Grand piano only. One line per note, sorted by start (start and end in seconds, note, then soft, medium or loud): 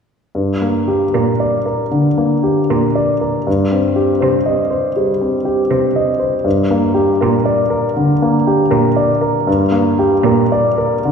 0.35 1.88 G2 soft
0.62 1.04 A#3 soft
0.88 1.30 G4 soft
1.14 1.56 A#4 soft
1.40 1.82 D5 soft
1.66 2.08 A#4 soft
1.91 2.33 D3 soft
2.18 2.59 A#3 soft
2.43 2.85 G4 soft
2.70 3.11 A#4 soft
2.95 3.36 D5 soft
3.21 3.47 A#4 soft
3.47 4.92 G2 soft
3.72 4.12 C4 soft
3.96 4.36 G4 soft
4.21 4.61 C5 soft
4.46 4.86 D#5 soft
4.71 5.11 C5 soft
4.96 5.36 G3 soft
5.21 5.60 C4 soft
5.45 5.85 G4 soft
5.71 6.10 C5 soft
5.96 6.36 D#5 soft
6.19 6.45 C5 soft
6.45 7.92 G2 soft
6.71 7.11 A#3 soft
6.94 7.35 G4 soft
7.21 7.61 A#4 soft
7.45 7.86 D5 soft
7.70 8.11 A#4 soft
7.97 8.36 D3 soft
8.22 8.62 A#3 soft
8.47 8.87 G4 soft
8.71 9.11 A#4 soft
8.96 9.37 D5 soft
9.21 9.62 A#4 soft
9.47 11.00 G2 soft
9.72 10.14 A#3 soft
9.99 10.40 G4 soft
10.26 10.67 A#4 soft
10.52 10.94 D5 soft
10.78 11.12 A#4 soft
11.05 11.12 D3 soft